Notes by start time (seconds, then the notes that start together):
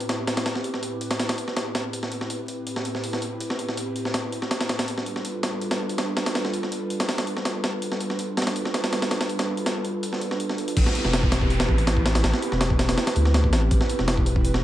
Already playing: A2 C4 E4 G4 B4
0.00 closed hi-hat
0.09 snare, closed hi-hat
0.27 snare, closed hi-hat
0.37 snare, closed hi-hat
0.46 snare, closed hi-hat
0.55 snare
0.64 closed hi-hat
0.74 snare
0.83 closed hi-hat
1.01 closed hi-hat
1.11 snare, closed hi-hat
1.20 snare, closed hi-hat
1.29 snare, closed hi-hat
1.38 closed hi-hat
1.48 snare
1.56 snare, closed hi-hat
1.75 snare, closed hi-hat
1.93 A2 C4 E4 G4 B4, closed hi-hat
2.03 snare
2.12 closed hi-hat
2.21 snare
2.30 closed hi-hat
2.48 closed hi-hat
2.67 closed hi-hat
2.76 snare
2.85 closed hi-hat
2.95 snare
3.04 open hi-hat
3.13 snare
3.22 closed hi-hat
3.40 closed hi-hat
3.50 snare
3.59 closed hi-hat
3.69 snare
3.77 closed hi-hat
3.96 closed hi-hat
4.05 snare
4.14 snare, closed hi-hat
4.32 closed hi-hat
4.42 snare
4.51 snare, closed hi-hat
4.61 snare, closed hi-hat
4.69 snare, closed hi-hat
4.79 snare, closed hi-hat
4.88 G3 D4 F4 A4 B4, closed hi-hat
4.98 snare
5.06 closed hi-hat
5.16 snare
5.25 closed hi-hat
5.43 snare, closed hi-hat
5.61 closed hi-hat
5.71 snare, closed hi-hat
5.89 closed hi-hat
5.98 snare, closed hi-hat
6.17 snare, closed hi-hat
6.26 snare, closed hi-hat
6.35 snare, closed hi-hat
6.45 snare
6.53 closed hi-hat
6.63 snare
6.72 closed hi-hat
6.90 closed hi-hat
7.00 snare, closed hi-hat
7.09 snare, closed hi-hat
7.18 snare, closed hi-hat
7.27 closed hi-hat
7.37 snare
7.45 snare, closed hi-hat
7.64 snare, closed hi-hat
7.82 G3 D4 F4 A4 B4, closed hi-hat
7.92 snare
8.00 closed hi-hat
8.10 snare
8.19 closed hi-hat
8.37 snare, closed hi-hat
8.42 snare, closed hi-hat
8.47 snare, closed hi-hat
8.56 closed hi-hat
8.65 snare
8.74 snare, closed hi-hat
8.84 snare, closed hi-hat
8.93 snare, closed hi-hat
9.02 snare, closed hi-hat
9.11 snare, closed hi-hat
9.21 snare, closed hi-hat
9.29 closed hi-hat
9.39 snare, closed hi-hat
9.57 closed hi-hat
9.66 snare, closed hi-hat
9.85 closed hi-hat
10.03 closed hi-hat
10.13 snare
10.21 closed hi-hat
10.31 snare
10.40 closed hi-hat
10.49 snare
10.58 closed hi-hat
10.68 closed hi-hat
10.77 A1 C4 E4 G4 B4, kick, closed hi-hat, crash, downlifter
10.86 snare
10.95 closed hi-hat
11.05 E1, snare
11.13 snare, closed hi-hat
11.23 kick
11.32 C4 E4 G4 B4, snare, closed hi-hat
11.41 kick
11.50 closed hi-hat
11.60 snare, closed hi-hat
11.69 A1 C4 E4 G4 B4, kick
11.78 C4 E4 G4 B4, closed hi-hat
11.87 snare, closed hi-hat
11.97 kick
12.06 snare, closed hi-hat
12.15 snare, closed hi-hat
12.24 A1 C4 E4 G4 B4, snare, closed hi-hat
12.34 snare
12.42 closed hi-hat
12.52 E1, snare
12.61 snare, closed hi-hat
12.70 kick
12.79 C4 E4 G4 B4, snare, closed hi-hat
12.89 snare, closed hi-hat
12.98 snare, closed hi-hat
13.07 snare, closed hi-hat
13.16 D2 C4 E4 G4 B4, closed hi-hat
13.25 C4 E4 G4 B4, snare
13.34 snare, closed hi-hat
13.44 kick
13.53 A1, snare, closed hi-hat
13.71 A1 C4 E4 G4 B4, kick, closed hi-hat
13.81 snare
13.89 closed hi-hat
13.99 E1, snare
14.08 snare, closed hi-hat
14.17 kick
14.26 C4 E4 G4 B4, closed hi-hat
14.36 kick
14.45 closed hi-hat
14.54 snare